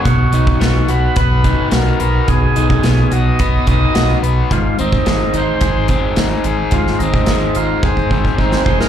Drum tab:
HH |x-x-x-x-x-x-x-x-|x-x-x-x-x-x-x-x-|x-x-x-x-x-x-x-x-|x-x-x-x---------|
SD |----o-------o---|----o-------o---|----o-------o---|-o--o--------o-o|
BD |o--o----o-o-----|o--o----o-o-----|o--o----o-o-----|o--o----ooooo-o-|